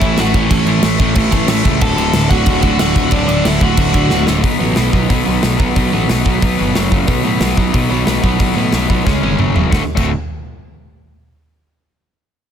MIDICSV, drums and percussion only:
0, 0, Header, 1, 2, 480
1, 0, Start_track
1, 0, Key_signature, 2, "major"
1, 0, Tempo, 329489
1, 727, Time_signature, 4, 2, 24, 8
1, 18225, End_track
2, 0, Start_track
2, 0, Title_t, "Drums"
2, 20, Note_on_c, 9, 49, 69
2, 22, Note_on_c, 9, 36, 101
2, 165, Note_off_c, 9, 49, 0
2, 168, Note_off_c, 9, 36, 0
2, 255, Note_on_c, 9, 49, 73
2, 256, Note_on_c, 9, 38, 109
2, 401, Note_off_c, 9, 49, 0
2, 402, Note_off_c, 9, 38, 0
2, 496, Note_on_c, 9, 49, 64
2, 500, Note_on_c, 9, 36, 93
2, 642, Note_off_c, 9, 49, 0
2, 645, Note_off_c, 9, 36, 0
2, 739, Note_on_c, 9, 36, 116
2, 741, Note_on_c, 9, 49, 91
2, 885, Note_off_c, 9, 36, 0
2, 887, Note_off_c, 9, 49, 0
2, 969, Note_on_c, 9, 49, 54
2, 1115, Note_off_c, 9, 49, 0
2, 1205, Note_on_c, 9, 49, 89
2, 1206, Note_on_c, 9, 38, 125
2, 1350, Note_off_c, 9, 49, 0
2, 1352, Note_off_c, 9, 38, 0
2, 1448, Note_on_c, 9, 49, 62
2, 1453, Note_on_c, 9, 36, 95
2, 1594, Note_off_c, 9, 49, 0
2, 1599, Note_off_c, 9, 36, 0
2, 1682, Note_on_c, 9, 49, 86
2, 1691, Note_on_c, 9, 36, 125
2, 1827, Note_off_c, 9, 49, 0
2, 1837, Note_off_c, 9, 36, 0
2, 1923, Note_on_c, 9, 49, 71
2, 1930, Note_on_c, 9, 36, 91
2, 2069, Note_off_c, 9, 49, 0
2, 2076, Note_off_c, 9, 36, 0
2, 2156, Note_on_c, 9, 49, 100
2, 2158, Note_on_c, 9, 38, 111
2, 2302, Note_off_c, 9, 49, 0
2, 2303, Note_off_c, 9, 38, 0
2, 2408, Note_on_c, 9, 36, 91
2, 2409, Note_on_c, 9, 49, 72
2, 2553, Note_off_c, 9, 36, 0
2, 2555, Note_off_c, 9, 49, 0
2, 2640, Note_on_c, 9, 49, 85
2, 2647, Note_on_c, 9, 36, 119
2, 2786, Note_off_c, 9, 49, 0
2, 2793, Note_off_c, 9, 36, 0
2, 2886, Note_on_c, 9, 49, 66
2, 3031, Note_off_c, 9, 49, 0
2, 3108, Note_on_c, 9, 49, 93
2, 3110, Note_on_c, 9, 38, 124
2, 3254, Note_off_c, 9, 49, 0
2, 3256, Note_off_c, 9, 38, 0
2, 3359, Note_on_c, 9, 36, 92
2, 3360, Note_on_c, 9, 49, 68
2, 3505, Note_off_c, 9, 36, 0
2, 3506, Note_off_c, 9, 49, 0
2, 3583, Note_on_c, 9, 49, 83
2, 3595, Note_on_c, 9, 36, 121
2, 3729, Note_off_c, 9, 49, 0
2, 3740, Note_off_c, 9, 36, 0
2, 3824, Note_on_c, 9, 49, 64
2, 3830, Note_on_c, 9, 36, 94
2, 3969, Note_off_c, 9, 49, 0
2, 3976, Note_off_c, 9, 36, 0
2, 4068, Note_on_c, 9, 49, 87
2, 4069, Note_on_c, 9, 38, 110
2, 4213, Note_off_c, 9, 49, 0
2, 4215, Note_off_c, 9, 38, 0
2, 4309, Note_on_c, 9, 36, 98
2, 4314, Note_on_c, 9, 49, 69
2, 4455, Note_off_c, 9, 36, 0
2, 4459, Note_off_c, 9, 49, 0
2, 4528, Note_on_c, 9, 49, 82
2, 4544, Note_on_c, 9, 36, 110
2, 4674, Note_off_c, 9, 49, 0
2, 4690, Note_off_c, 9, 36, 0
2, 4787, Note_on_c, 9, 49, 58
2, 4933, Note_off_c, 9, 49, 0
2, 5029, Note_on_c, 9, 49, 92
2, 5030, Note_on_c, 9, 38, 122
2, 5174, Note_off_c, 9, 49, 0
2, 5176, Note_off_c, 9, 38, 0
2, 5258, Note_on_c, 9, 49, 67
2, 5262, Note_on_c, 9, 36, 95
2, 5404, Note_off_c, 9, 49, 0
2, 5408, Note_off_c, 9, 36, 0
2, 5495, Note_on_c, 9, 49, 92
2, 5501, Note_on_c, 9, 36, 125
2, 5640, Note_off_c, 9, 49, 0
2, 5647, Note_off_c, 9, 36, 0
2, 5739, Note_on_c, 9, 49, 70
2, 5743, Note_on_c, 9, 36, 93
2, 5885, Note_off_c, 9, 49, 0
2, 5889, Note_off_c, 9, 36, 0
2, 5978, Note_on_c, 9, 38, 70
2, 6123, Note_off_c, 9, 38, 0
2, 6220, Note_on_c, 9, 38, 100
2, 6366, Note_off_c, 9, 38, 0
2, 6464, Note_on_c, 9, 46, 61
2, 6465, Note_on_c, 9, 36, 114
2, 6610, Note_off_c, 9, 46, 0
2, 6611, Note_off_c, 9, 36, 0
2, 6932, Note_on_c, 9, 46, 62
2, 6934, Note_on_c, 9, 38, 109
2, 7078, Note_off_c, 9, 46, 0
2, 7079, Note_off_c, 9, 38, 0
2, 7186, Note_on_c, 9, 36, 79
2, 7331, Note_off_c, 9, 36, 0
2, 7430, Note_on_c, 9, 46, 54
2, 7431, Note_on_c, 9, 36, 103
2, 7576, Note_off_c, 9, 46, 0
2, 7577, Note_off_c, 9, 36, 0
2, 7907, Note_on_c, 9, 46, 51
2, 7909, Note_on_c, 9, 38, 114
2, 8053, Note_off_c, 9, 46, 0
2, 8054, Note_off_c, 9, 38, 0
2, 8154, Note_on_c, 9, 36, 92
2, 8300, Note_off_c, 9, 36, 0
2, 8390, Note_on_c, 9, 46, 51
2, 8396, Note_on_c, 9, 36, 109
2, 8536, Note_off_c, 9, 46, 0
2, 8542, Note_off_c, 9, 36, 0
2, 8877, Note_on_c, 9, 46, 63
2, 8879, Note_on_c, 9, 38, 120
2, 9023, Note_off_c, 9, 46, 0
2, 9025, Note_off_c, 9, 38, 0
2, 9116, Note_on_c, 9, 36, 83
2, 9262, Note_off_c, 9, 36, 0
2, 9358, Note_on_c, 9, 36, 106
2, 9358, Note_on_c, 9, 46, 58
2, 9504, Note_off_c, 9, 36, 0
2, 9504, Note_off_c, 9, 46, 0
2, 9838, Note_on_c, 9, 46, 54
2, 9839, Note_on_c, 9, 38, 101
2, 9984, Note_off_c, 9, 46, 0
2, 9985, Note_off_c, 9, 38, 0
2, 10079, Note_on_c, 9, 36, 82
2, 10225, Note_off_c, 9, 36, 0
2, 10306, Note_on_c, 9, 46, 57
2, 10315, Note_on_c, 9, 36, 106
2, 10452, Note_off_c, 9, 46, 0
2, 10461, Note_off_c, 9, 36, 0
2, 10790, Note_on_c, 9, 46, 59
2, 10791, Note_on_c, 9, 38, 116
2, 10936, Note_off_c, 9, 46, 0
2, 10937, Note_off_c, 9, 38, 0
2, 11035, Note_on_c, 9, 36, 87
2, 11181, Note_off_c, 9, 36, 0
2, 11275, Note_on_c, 9, 46, 52
2, 11278, Note_on_c, 9, 36, 108
2, 11421, Note_off_c, 9, 46, 0
2, 11424, Note_off_c, 9, 36, 0
2, 11754, Note_on_c, 9, 46, 51
2, 11756, Note_on_c, 9, 38, 104
2, 11900, Note_off_c, 9, 46, 0
2, 11902, Note_off_c, 9, 38, 0
2, 11999, Note_on_c, 9, 36, 89
2, 12144, Note_off_c, 9, 36, 0
2, 12229, Note_on_c, 9, 46, 53
2, 12237, Note_on_c, 9, 36, 100
2, 12375, Note_off_c, 9, 46, 0
2, 12383, Note_off_c, 9, 36, 0
2, 12710, Note_on_c, 9, 46, 57
2, 12711, Note_on_c, 9, 38, 110
2, 12855, Note_off_c, 9, 46, 0
2, 12857, Note_off_c, 9, 38, 0
2, 12964, Note_on_c, 9, 36, 85
2, 13109, Note_off_c, 9, 36, 0
2, 13207, Note_on_c, 9, 36, 106
2, 13221, Note_on_c, 9, 38, 57
2, 13353, Note_off_c, 9, 36, 0
2, 13367, Note_off_c, 9, 38, 0
2, 13452, Note_on_c, 9, 48, 70
2, 13598, Note_off_c, 9, 48, 0
2, 13675, Note_on_c, 9, 45, 77
2, 13820, Note_off_c, 9, 45, 0
2, 13924, Note_on_c, 9, 43, 82
2, 14070, Note_off_c, 9, 43, 0
2, 14167, Note_on_c, 9, 36, 105
2, 14174, Note_on_c, 9, 38, 85
2, 14312, Note_off_c, 9, 36, 0
2, 14320, Note_off_c, 9, 38, 0
2, 14528, Note_on_c, 9, 36, 100
2, 14531, Note_on_c, 9, 57, 90
2, 14673, Note_off_c, 9, 36, 0
2, 14677, Note_off_c, 9, 57, 0
2, 18225, End_track
0, 0, End_of_file